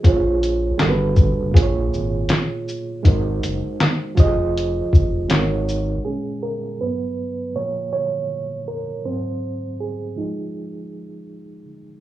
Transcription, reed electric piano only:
X:1
M:4/4
L:1/8
Q:"Swing 16ths" 1/4=80
K:Bbm
V:1 name="Reed electric piano"
[B,FAcd]2 [=G,=D^F=AB=B]2 [_B,,B,=F_Ac_d]3 z | [A,EGBc]3 [F,F=GAce]2 z [A,E_GBd]2 | A B =B2 d d2 _B | c2 A4- A z |]
V:2 name="Reed electric piano" clef=bass
z8 | z8 | [B,,A,D]2 [=G,,^F,=B,]2 [_B,,=F,_B,]4 | [A,,G,C] z2 [F,A,E]4- [F,A,E] |]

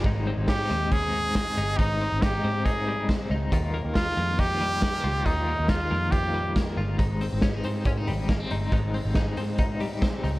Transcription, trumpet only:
X:1
M:4/4
L:1/8
Q:1/4=138
K:Ab
V:1 name="Trumpet"
z2 G2 A4 | E2 G2 A2 z2 | z2 F2 G4 | E2 F2 G2 z2 |
z8 | z8 |]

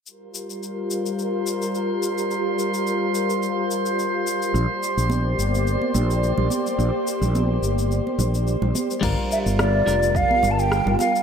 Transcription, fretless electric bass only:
X:1
M:4/4
L:1/16
Q:"Swing 16ths" 1/4=107
K:Gm
V:1 name="Fretless electric bass" clef=bass
z16 | z16 | B,,, z2 B,,,3 G,,,3 z B,,,3 B,,, z2 | B,,, z2 B,,,3 G,,,3 z B,,,3 B,,, z2 |
G,,, z2 G,,,3 F,,,3 z G,,,3 G,,, z2 |]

